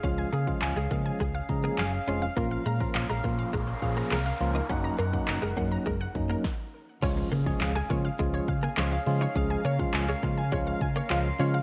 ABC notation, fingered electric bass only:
X:1
M:4/4
L:1/16
Q:1/4=103
K:Db
V:1 name="Fingered electric bass" clef=bass
D,,2 D,2 D,, D,, D,2 D,,2 D,2 G,,,2 F,,,2 | B,,,2 B,,2 B,,, B,,, B,,2 B,,,2 B,,2 C,,2 D,,2 | G,,,2 G,,2 G,,, G,,, G,,2 G,,,2 G,,2 z4 | D,,2 D,2 D,,2 D,2 D,,2 D,2 D,,2 D,2 |
D,,2 D,2 D,,2 D,2 D,,2 D,2 D,,2 D,2 |]